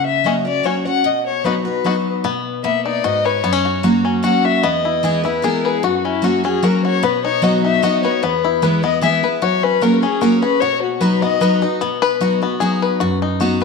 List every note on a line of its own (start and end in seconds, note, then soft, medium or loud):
0.00 0.61 C#3 medium
0.06 0.27 E5 loud
0.24 0.45 F#3 medium
0.24 0.45 A#3 medium
0.24 0.45 C#4 medium
0.24 0.35 C#4 medium
0.24 0.44 F#4 medium
0.24 0.29 F#4 medium
0.24 0.46 D#5 medium
0.45 0.64 C#4 soft
0.45 0.64 F#4 medium
0.45 0.66 D5 medium
0.63 0.84 F#3 medium
0.63 0.85 A#3 medium
0.63 0.85 C#4 medium
0.63 0.75 C#4 medium
0.63 0.84 F#4 medium
0.63 0.68 F#4 medium
0.63 0.86 C#5 medium
0.85 1.05 C#4 soft
0.85 1.04 F#4 medium
0.85 1.07 F#5 loud
1.04 1.81 B2 medium
1.04 1.26 D#5 medium
1.26 1.46 C#5 medium
1.44 1.65 F#3 medium
1.44 1.65 B3 medium
1.44 1.54 B3 medium
1.44 1.65 D#4 medium
1.44 1.55 D#4 medium
1.44 1.64 F#4 medium
1.44 1.55 F#4 medium
1.44 1.65 B4 medium
1.65 1.85 D#4 soft
1.65 1.83 F#4 medium
1.65 2.12 B4 medium
1.84 2.22 F#3 medium
1.84 2.23 B3 medium
1.84 1.94 B3 medium
1.84 2.23 D#4 medium
1.84 1.95 D#4 medium
1.84 2.23 F#4 medium
1.84 1.95 F#4 medium
2.24 3.00 B2 medium
2.24 2.63 B3 medium
2.63 3.02 A#3 medium
2.63 3.21 B3 medium
2.63 2.83 E5 medium
2.85 3.40 D#4 medium
2.85 3.06 D5 medium
3.04 3.42 G#2 medium
3.04 3.44 F#4 medium
3.04 3.26 D#5 medium
3.25 3.44 B4 medium
3.25 3.84 C#5 medium
3.44 4.20 F#2 medium
3.44 3.52 B3 medium
3.52 3.84 C#4 medium
3.65 3.83 F#4 medium
3.83 4.21 F#3 medium
3.83 4.22 A#3 medium
3.83 4.22 C#4 medium
3.83 4.23 F#4 medium
4.05 4.60 C#4 medium
4.23 4.61 F#3 medium
4.23 4.62 A#3 medium
4.23 4.62 C#4 medium
4.23 4.44 F#4 medium
4.23 4.62 F#4 medium
4.23 4.46 F#5 medium
4.44 4.64 F#4 medium
4.44 4.65 E5 loud
4.63 5.40 E2 medium
4.63 5.20 B3 medium
4.63 5.24 D#5 medium
4.85 5.24 E4 medium
5.03 5.23 E3 medium
5.03 5.24 G#3 medium
5.03 5.24 B3 medium
5.03 5.22 E4 loud
5.03 5.43 G#4 medium
5.24 5.43 B3 soft
5.24 5.42 E4 medium
5.24 5.80 E4 medium
5.24 5.45 B4 medium
5.42 5.81 E3 medium
5.42 5.81 G#3 loud
5.42 5.82 B3 medium
5.42 5.82 E4 medium
5.42 5.84 G#4 medium
5.42 5.67 A#4 medium
5.65 5.85 G#4 medium
5.65 5.84 B4 medium
5.83 6.59 F#2 medium
5.83 6.06 F#4 medium
5.83 6.23 F#4 medium
6.04 6.44 C#4 medium
6.04 6.25 E4 medium
6.22 6.43 F#3 medium
6.22 6.43 A#3 medium
6.22 6.44 C#4 loud
6.22 6.44 F#4 medium
6.22 6.42 F#4 medium
6.22 6.62 F#4 medium
6.44 6.99 C#4 medium
6.44 6.63 C#4 soft
6.44 6.62 F#4 medium
6.44 6.66 G#4 medium
6.62 7.01 F#3 medium
6.62 7.01 A#3 medium
6.62 7.01 C#4 medium
6.62 6.84 F#4 medium
6.62 7.02 F#4 medium
6.62 6.84 A#4 medium
6.84 7.03 F#4 medium
6.84 7.05 C#5 loud
7.03 7.79 B2 medium
7.03 7.60 B3 medium
7.03 7.24 B4 medium
7.25 7.63 D#4 medium
7.25 7.44 C#5 loud
7.42 7.80 F#3 medium
7.42 7.81 B3 medium
7.42 7.81 D#4 medium
7.42 7.82 F#4 medium
7.42 7.81 F#4 loud
7.42 7.62 D#5 medium
7.63 8.19 D#4 medium
7.63 7.84 E5 medium
7.82 8.03 F#3 medium
7.82 8.03 B3 loud
7.82 8.03 D#4 medium
7.82 8.23 F#4 medium
7.82 8.02 F#4 loud
7.82 8.03 D#5 medium
8.03 8.22 D#4 medium
8.03 8.21 F#4 medium
8.03 8.23 B4 medium
8.03 8.24 C#5 medium
8.23 8.98 E2 medium
8.23 8.80 B3 medium
8.23 8.83 B4 medium
8.44 8.99 E4 medium
8.62 8.82 E3 medium
8.62 8.83 G#3 medium
8.62 8.83 B3 medium
8.62 8.82 E4 medium
8.62 9.19 B4 medium
8.83 9.38 B3 medium
8.83 9.02 B3 soft
8.83 9.01 E4 medium
8.83 9.01 D#5 medium
9.01 9.22 E3 medium
9.01 9.22 G#3 medium
9.01 9.23 B3 loud
9.01 9.21 E4 medium
9.01 9.42 G#4 medium
9.01 9.15 E5 loud
9.23 9.42 B3 soft
9.23 9.41 E4 medium
9.23 9.42 B4 medium
9.42 9.80 F#3 medium
9.42 9.82 F#4 medium
9.42 9.65 C#5 medium
9.63 10.02 C#4 medium
9.63 9.84 B4 loud
9.81 10.02 F#3 medium
9.81 10.02 A#3 medium
9.81 10.02 C#4 medium
9.81 10.21 F#4 medium
9.81 10.01 G#4 loud
9.81 10.02 A#4 medium
10.02 10.58 C#4 medium
10.02 10.21 C#4 soft
10.02 10.21 G#4 medium
10.02 10.23 G#4 medium
10.21 10.41 F#3 medium
10.21 10.42 A#3 medium
10.21 10.42 C#4 loud
10.21 10.43 F#4 medium
10.21 10.41 G#4 medium
10.21 10.41 A#4 medium
10.42 10.61 C#4 medium
10.42 10.62 F#4 medium
10.42 10.60 G#4 medium
10.42 10.62 B4 medium
10.60 11.37 B2 medium
10.60 11.18 F#4 medium
10.60 10.81 C#5 loud
10.82 11.02 F#4 medium
11.00 11.21 F#3 loud
11.00 11.22 B3 medium
11.00 11.22 D#4 medium
11.00 11.21 F#4 loud
11.00 11.23 B4 medium
11.00 11.40 B4 medium
11.21 11.77 B3 medium
11.21 11.41 D#4 soft
11.21 11.40 F#4 soft
11.21 11.61 D#5 loud
11.41 11.61 F#3 medium
11.41 11.61 B3 medium
11.41 11.62 D#4 medium
11.41 11.60 F#4 loud
11.41 11.81 B4 medium
11.62 11.81 D#4 medium
11.62 11.80 F#4 medium
11.81 12.57 B2 medium
11.81 12.42 B3 medium
12.02 12.62 B4 loud
12.21 12.41 F#3 medium
12.21 12.41 B3 medium
12.21 12.41 D#4 medium
12.21 13.00 F#4 medium
12.21 12.40 F#4 medium
12.42 13.64 B3 medium
12.42 12.61 D#4 soft
12.42 12.60 F#4 medium
12.60 12.98 F#3 medium
12.60 12.99 B3 medium
12.60 12.99 D#4 loud
12.60 12.99 F#4 medium
12.60 13.00 G#4 medium
12.82 13.61 B4 medium
13.00 13.64 F#2 medium
13.00 13.22 F#4 medium
13.22 13.64 D#4 medium
13.40 13.60 F#3 medium
13.40 13.60 B3 loud
13.40 13.61 D#4 medium
13.40 13.64 F#4 medium
13.40 13.59 F#4 medium
13.61 13.64 F#4 medium